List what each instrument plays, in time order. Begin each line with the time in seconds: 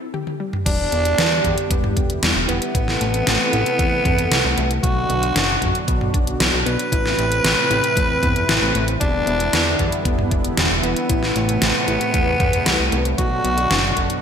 0.14 synth arpeggio sound G4, high tom
0.27 high tom
0.40 synth arpeggio sound G3
0.53 mid tom
0.66 analog synth bass E1, analog synth pad D3 G3 B3 E4 G4, synth arpeggio sound G3, tenor saxophone D4, kick, closed hi-hat, crash
0.92 analog synth bass E1, synth arpeggio sound B3, closed hi-hat
1.05 closed hi-hat
1.18 analog synth bass E2, synth arpeggio sound D4, snare, closed hi-hat
1.44 analog synth bass E2, synth arpeggio sound G3, kick, closed hi-hat, mid tom
1.58 closed hi-hat
1.71 analog synth bass E1, synth arpeggio sound B3, kick, closed hi-hat
1.84 mid tom
1.97 analog synth bass E1, synth arpeggio sound D4, kick, closed hi-hat
2.10 closed hi-hat
2.23 analog synth bass E1, synth arpeggio sound G3, snare, closed hi-hat
2.36 analog synth bass E1
2.48 analog synth bass E1, tenor saxophone B3, synth arpeggio sound B3, closed hi-hat
2.62 closed hi-hat
2.74 analog synth bass A1, analog synth pad C3 E3 A3 A4, synth arpeggio sound E4, kick, closed hi-hat
2.88 snare
3.01 analog synth bass A1, synth arpeggio sound A3, closed hi-hat
3.14 closed hi-hat
3.27 analog synth bass A1, synth arpeggio sound C4, snare, closed hi-hat
3.53 analog synth bass A1, synth arpeggio sound E4, closed hi-hat
3.66 closed hi-hat
3.79 analog synth bass E2, synth arpeggio sound A3, kick, closed hi-hat
4.05 analog synth bass E2, synth arpeggio sound C4, kick, closed hi-hat, mid tom
4.18 closed hi-hat
4.31 analog synth bass C2, synth arpeggio sound E4, snare, closed hi-hat
4.45 analog synth bass C2
4.57 analog synth bass C2, synth arpeggio sound A3, closed hi-hat
4.71 closed hi-hat
4.83 analog synth bass B1, analog synth pad B2 D3 F#3 D4 F#4, synth arpeggio sound F#3, tenor saxophone F#4, kick, closed hi-hat
5.09 analog synth bass B1, synth arpeggio sound B3, closed hi-hat
5.23 closed hi-hat
5.36 analog synth bass F#1, synth arpeggio sound D4, snare, closed hi-hat
5.62 analog synth bass F#1, synth arpeggio sound F#3, kick, closed hi-hat, mid tom
5.75 closed hi-hat
5.88 analog synth bass B1, synth arpeggio sound B3, kick, closed hi-hat
6.01 mid tom
6.14 analog synth bass B1, synth arpeggio sound D4, kick, closed hi-hat
6.27 closed hi-hat
6.40 analog synth bass B1, synth arpeggio sound F#3, snare, closed hi-hat
6.53 analog synth bass B1
6.66 analog synth bass B1, synth arpeggio sound B3, tenor saxophone B4, closed hi-hat
6.79 closed hi-hat
6.92 analog synth bass A1, analog synth pad A2 C3 E3 C4 E4, synth arpeggio sound E4, kick, closed hi-hat
7.06 snare
7.18 analog synth bass A1, synth arpeggio sound A3, closed hi-hat
7.32 closed hi-hat
7.44 analog synth bass A1, synth arpeggio sound C4, snare, closed hi-hat
7.70 analog synth bass A1, synth arpeggio sound E4, closed hi-hat
7.84 closed hi-hat
7.97 analog synth bass E2, synth arpeggio sound A3, kick, closed hi-hat
8.23 analog synth bass E2, synth arpeggio sound C4, kick, closed hi-hat, mid tom
8.36 closed hi-hat
8.49 analog synth bass A1, synth arpeggio sound E4, snare, closed hi-hat
8.62 analog synth bass A1
8.75 analog synth bass A1, synth arpeggio sound A3, closed hi-hat
8.88 closed hi-hat
9.00 analog synth bass E1, analog synth pad D3 G3 B3, synth arpeggio sound G3, tenor saxophone D4, kick, closed hi-hat
9.27 analog synth bass E1, synth arpeggio sound B3, closed hi-hat
9.40 closed hi-hat
9.53 analog synth bass E2, synth arpeggio sound D4, snare, closed hi-hat
9.79 analog synth bass E2, synth arpeggio sound G3, kick, closed hi-hat, mid tom
9.92 closed hi-hat
10.05 analog synth bass E1, synth arpeggio sound B3, kick, closed hi-hat
10.19 mid tom
10.31 analog synth bass E1, synth arpeggio sound D4, kick, closed hi-hat
10.45 closed hi-hat
10.57 analog synth bass E1, synth arpeggio sound G3, snare, closed hi-hat
10.71 analog synth bass E1
10.83 analog synth bass E1, tenor saxophone B3, synth arpeggio sound B3, closed hi-hat
10.97 closed hi-hat
11.10 analog synth bass A1, analog synth pad A2 C3 A3, synth arpeggio sound E4, kick, closed hi-hat
11.23 snare
11.36 analog synth bass A1, synth arpeggio sound A3, closed hi-hat
11.49 closed hi-hat
11.62 analog synth bass A1, synth arpeggio sound C4, snare, closed hi-hat
11.88 analog synth bass A1, synth arpeggio sound E4, closed hi-hat
12.01 closed hi-hat
12.14 analog synth bass E2, synth arpeggio sound A3, kick, closed hi-hat
12.40 analog synth bass E2, synth arpeggio sound C4, kick, closed hi-hat, mid tom
12.53 closed hi-hat
12.66 analog synth bass C2, synth arpeggio sound E4, snare, closed hi-hat
12.79 analog synth bass C2
12.92 analog synth bass C2, synth arpeggio sound A3, closed hi-hat
13.05 closed hi-hat
13.18 analog synth bass B1, analog synth pad B2 D3 F#3 D4 F#4, synth arpeggio sound F#3, tenor saxophone F#4, kick, closed hi-hat
13.44 analog synth bass B1, synth arpeggio sound B3, closed hi-hat
13.58 closed hi-hat
13.70 analog synth bass F#1, synth arpeggio sound D4, snare, closed hi-hat
13.97 analog synth bass F#1, synth arpeggio sound F#3, kick, closed hi-hat, mid tom
14.10 closed hi-hat